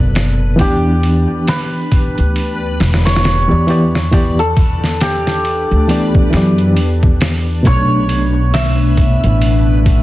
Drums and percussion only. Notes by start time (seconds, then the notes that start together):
0.15 snare, open hi-hat
0.59 kick, open hi-hat
1.03 open hi-hat
1.47 snare, open hi-hat
1.92 kick, open hi-hat
2.18 closed hi-hat
2.36 open hi-hat
2.80 snare, open hi-hat
2.93 snare, open hi-hat
3.06 snare, open hi-hat
3.15 snare, open hi-hat
3.24 snare, open hi-hat
3.68 open hi-hat
3.95 snare
4.12 kick, open hi-hat
4.39 closed hi-hat
4.57 kick, open hi-hat
4.84 snare
5.00 snare, open hi-hat
5.27 snare
5.45 open hi-hat
5.89 open hi-hat
6.15 kick
6.33 snare, open hi-hat
6.58 closed hi-hat
6.76 open hi-hat
7.03 kick
7.21 snare, open hi-hat
7.65 kick, open hi-hat
8.09 open hi-hat
8.54 snare, open hi-hat
8.97 kick, open hi-hat
9.24 closed hi-hat
9.42 open hi-hat
9.86 kick, open hi-hat